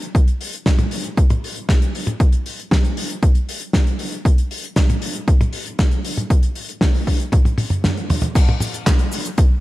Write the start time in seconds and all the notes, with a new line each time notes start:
0.02 closed hi-hat
0.15 kick, closed hi-hat
0.28 closed hi-hat
0.41 open hi-hat
0.53 closed hi-hat
0.66 kick, snare, closed hi-hat
0.78 closed hi-hat, high tom
0.91 open hi-hat
1.04 closed hi-hat
1.17 kick, closed hi-hat
1.30 closed hi-hat, high tom
1.44 open hi-hat
1.56 closed hi-hat
1.69 kick, snare, closed hi-hat
1.82 closed hi-hat
1.95 open hi-hat
2.07 closed hi-hat, high tom
2.20 kick, closed hi-hat
2.32 closed hi-hat
2.46 open hi-hat
2.60 closed hi-hat
2.71 kick, snare, closed hi-hat
2.84 closed hi-hat
2.97 open hi-hat
3.10 closed hi-hat
3.23 kick, closed hi-hat
3.35 closed hi-hat
3.49 open hi-hat
3.61 closed hi-hat
3.73 kick, snare, closed hi-hat
3.87 closed hi-hat
3.99 open hi-hat
4.12 closed hi-hat
4.25 kick, closed hi-hat
4.38 closed hi-hat
4.51 open hi-hat
4.64 closed hi-hat
4.76 kick, snare, closed hi-hat
4.89 closed hi-hat, high tom
5.02 open hi-hat
5.14 closed hi-hat
5.28 kick, closed hi-hat
5.41 closed hi-hat, high tom
5.53 open hi-hat
5.66 closed hi-hat
5.79 kick, snare, closed hi-hat
5.91 closed hi-hat
6.05 open hi-hat
6.17 closed hi-hat, high tom
6.30 kick, closed hi-hat
6.43 closed hi-hat
6.55 open hi-hat
6.69 closed hi-hat
6.81 kick, snare, closed hi-hat
6.94 open hi-hat
7.07 kick, open hi-hat
7.20 closed hi-hat
7.32 kick, closed hi-hat, high tom
7.45 closed hi-hat, high tom
7.58 open hi-hat, high tom
7.70 closed hi-hat, mid tom
7.84 snare, closed hi-hat, mid tom
7.97 closed hi-hat
8.10 mid tom, open hi-hat
8.22 closed hi-hat, mid tom
8.35 kick, closed hi-hat, crash, cabasa
8.49 high tom
8.60 open hi-hat, high tom, cabasa
8.74 closed hi-hat, cabasa
8.87 kick, snare, clap, closed hi-hat, cabasa
8.99 closed hi-hat
9.12 open hi-hat, cabasa
9.25 closed hi-hat, cabasa
9.38 kick, closed hi-hat, cabasa